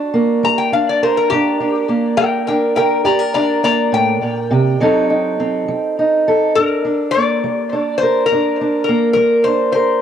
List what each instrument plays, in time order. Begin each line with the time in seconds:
Already playing: steel-string acoustic guitar D4
0.14 steel-string acoustic guitar A#3
0.43 steel-string acoustic guitar G3, resonator guitar played with a steel bar A#5
0.58 resonator guitar played with a steel bar G5
0.72 steel-string acoustic guitar D4, resonator guitar played with a steel bar F5
0.89 resonator guitar played with a steel bar D5
1.03 steel-string acoustic guitar A#4, resonator guitar played with a steel bar C5
1.17 resonator guitar played with a steel bar A#4
1.30 steel-string acoustic guitar G2 D4, resonator guitar played with a steel bar G4
1.60 steel-string acoustic guitar D4
1.89 steel-string acoustic guitar A#3
2.17 steel-string acoustic guitar G3, resonator guitar played with a steel bar A#4 G5
2.47 steel-string acoustic guitar D4, resonator guitar played with a steel bar A#4 G5
2.76 resonator guitar played with a steel bar A#4 G5, steel-string acoustic guitar A#4
3.05 steel-string acoustic guitar G2 G4, resonator guitar played with a steel bar D5 A#5
3.19 steel-string acoustic guitar A#4
3.34 steel-string acoustic guitar D4, resonator guitar played with a steel bar D5 A#5
3.63 steel-string acoustic guitar A#3, resonator guitar played with a steel bar D5 A#5
3.92 steel-string acoustic guitar A2, resonator guitar played with a steel bar G5
4.21 steel-string acoustic guitar A#2
4.51 steel-string acoustic guitar C3
4.80 steel-string acoustic guitar D3 F#3 C4 D#4 A4
5.10 steel-string acoustic guitar D#4
5.40 steel-string acoustic guitar C4
5.68 steel-string acoustic guitar F#3
5.99 steel-string acoustic guitar D#4
6.28 steel-string acoustic guitar A4
6.55 steel-string acoustic guitar G2 D4, resonator guitar played with a steel bar A#4
6.85 steel-string acoustic guitar D4
7.11 resonator guitar played with a steel bar D5
7.17 steel-string acoustic guitar A#3
7.44 steel-string acoustic guitar G3
7.73 steel-string acoustic guitar D4
7.98 resonator guitar played with a steel bar C5
8.03 steel-string acoustic guitar A#4
8.26 resonator guitar played with a steel bar A#4
8.32 steel-string acoustic guitar G2 D4
8.61 steel-string acoustic guitar D4
8.84 resonator guitar played with a steel bar A#4
8.89 steel-string acoustic guitar A#3
9.13 steel-string acoustic guitar G3, resonator guitar played with a steel bar A#4
9.44 steel-string acoustic guitar D4, resonator guitar played with a steel bar C5
9.72 steel-string acoustic guitar A#4, resonator guitar played with a steel bar C5